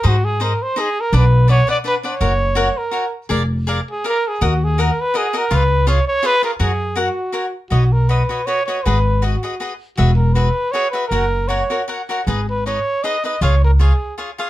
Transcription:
<<
  \new Staff \with { instrumentName = "Cavaquinho" } { \time 3/4 \key fis \major \tempo 4 = 161 <dis' gis' bis' dis''>8 r8 <dis' gis' bis' dis''>8 r8 <dis' gis' bis' dis''>8 r8 | <d' b' d'' fis''>8 r8 <d' b' d'' fis''>8 <d' b' d'' fis''>8 <d' b' d'' fis''>8 <d' b' d'' fis''>8 | <fis' ais' cis'' fis''>8 r8 <fis' ais' cis'' fis''>8 r8 <fis' ais' cis'' fis''>8 r8 | <gis' ais' d'' eis''>8 r8 <gis' ais' d'' eis''>8 r8 <gis' ais' d'' eis''>8 r8 |
<fis' ais' dis'' fis''>8 r8 <fis' ais' dis'' fis''>8 r8 <fis' ais' dis'' fis''>8 <fis' ais' dis'' fis''>8 | <eis' gis' cis'' eis''>8 r8 <eis' gis' cis'' eis''>8 r8 <eis' gis' cis'' eis''>8 <eis' gis' cis'' eis''>8 | <fis' ais' cis'' fis''>8 r8 <fis' ais' cis'' fis''>8 r8 <fis' ais' cis'' fis''>8 r8 | \key b \major <fis' b' cis'' dis''>8 r8 <fis' b' cis'' dis''>8 <fis' b' cis'' dis''>8 <fis' b' cis'' dis''>8 <fis' b' cis'' dis''>8 |
<fis' gis' b' dis''>8 r8 <fis' gis' b' dis''>8 <fis' gis' b' dis''>8 <fis' gis' b' dis''>8 r8 | <fis' gis' b' e''>8 r8 <fis' gis' b' e''>8 r8 <fis' gis' b' e''>8 <fis' gis' b' e''>8 | <fis' ais' cis'' fis''>8 r8 <fis' ais' cis'' fis''>8 <fis' ais' cis'' fis''>8 <fis' ais' cis'' fis''>8 <fis' ais' cis'' fis''>8 | <dis' gis' b' dis''>8 r8 <dis' gis' b' dis''>8 r8 <dis' gis' b' dis''>8 <dis' gis' b' dis''>8 |
<eis' gis' cis'' eis''>8 r8 <eis' gis' cis'' eis''>8 r8 <eis' gis' cis'' eis''>8 <eis' gis' cis'' eis''>8 | }
  \new Staff \with { instrumentName = "Trumpet" } { \time 3/4 \key fis \major fis'8 gis'8 ais'8 bis'8 gis'8 ais'8 | b'4 cis''8 d''8 b'8 cis''8~ | cis''4. ais'4 r8 | r4. gis'8 ais'8 gis'8 |
fis'8 gis'8 ais'8 b'8 gis'8 ais'8 | b'4 cis''8 cis''8 b'8 ais'8 | gis'4 fis'4. r8 | \key b \major fis'8 ais'8 b'4 cis''8 cis''8 |
b'4 fis'4 r4 | fis'8 ais'8 b'4 cis''8 b'8 | ais'4 cis''4 r4 | gis'8 b'8 cis''4 dis''8 dis''8 |
cis''8 ais'8 gis'4 r4 | }
  \new Staff \with { instrumentName = "Upright bass" } { \clef bass \time 3/4 \key fis \major gis,2 r4 | b,,2 r4 | fis,,2 r4 | eis,,2 r4 |
dis,2 r4 | cis,2 r4 | fis,2 r4 | \key b \major b,,2 r4 |
gis,,2 r4 | e,,2 r4 | fis,,2 r4 | gis,,2 r4 |
cis,2 r4 | }
>>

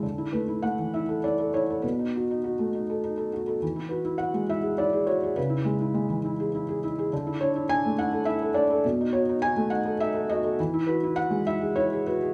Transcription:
\new Staff \with { instrumentName = "Felt piano" } { \time 3/4 \key d \lydian \tempo 4 = 102 << { r8 b'8 fis''8 e''8 d''8 cis''8 | b'2~ b'8 r8 | r8 b'8 fis''8 e''8 d''8 cis''8 | b'2~ b'8 r8 |
r8 cis''8 gis''8 fis''8 e''8 d''8 | r8 cis''8 gis''8 fis''8 e''8 dis''8 | r8 b'8 fis''8 e''8 cis''8 b'8 | } \\ { d16 e'16 a16 e'16 a16 e16 e'16 a'16 e'16 a'16 e'16 a'16 | b,16 dis'16 fis'16 dis'16 fis'16 a16 dis'16 a'16 dis'16 a'16 fis'16 a'16 | e16 e'16 fis'16 e'16 fis'16 gis16 e'16 gis'16 e'16 gis'16 fis'16 gis'16 | cis16 e'16 gis16 e'16 gis16 e16 e'16 gis'16 e'16 gis'16 e'16 gis'16 |
d16 e'16 d'16 e'16 d'16 a16 e'16 a'16 e'16 a'16 d'16 a'16 | b,16 dis'16 fis'16 dis'16 fis'16 a16 dis'16 a'16 dis'16 a'16 fis'16 a'16 | e16 e'16 fis'16 e'16 fis'16 gis16 e'16 gis'16 e'16 gis'16 fis'16 gis'16 | } >> }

